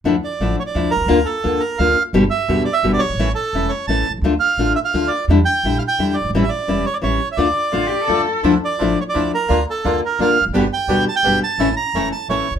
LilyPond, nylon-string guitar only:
\new Staff \with { instrumentName = "Nylon-string guitar" } { \time 3/4 \key d \minor \tempo 4 = 172 <d f a d' e'>16 r8. <d f a d' e'>8 r8 <d f a d' e'>8 r8 | <d bes d' f'>16 r8. <d bes d' f'>8 r8 <d bes d' f'>8 r8 | <b, d g b g'>16 r8. <b, d g b g'>8 r8 <b, d g b g'>8 r8 | <e a cis' e'>16 r8. <e a cis' e'>8 r8 <e a cis' e'>8 r8 |
<d a d' f'>16 r8. <d a d' f'>8 r8 <d a d' f'>8 r8 | <d g d' e'>16 r8. <d g d' e'>8 r8 <d g d' e'>8 r8 | <e g cis' e'>16 r8. <e g cis' e'>8 r8 <e g cis' e'>8 r8 | <d a d' f'>16 r8. <d a d' f'>8 r8 <d a d' f'>8 r8 |
<d f a d' e'>16 r8. <d f a d' e'>8 r8 <d f a d' e'>8 r8 | <d bes d' f'>16 r8. <d bes d' f'>8 r8 <d bes d' f'>8 r8 | <b, d g b g'>16 r8. <b, d g b g'>8 r8 <b, d g b g'>8 r8 | <e a cis' e'>16 r8. <e a cis' e'>8 r8 <e a cis' e'>8 r8 | }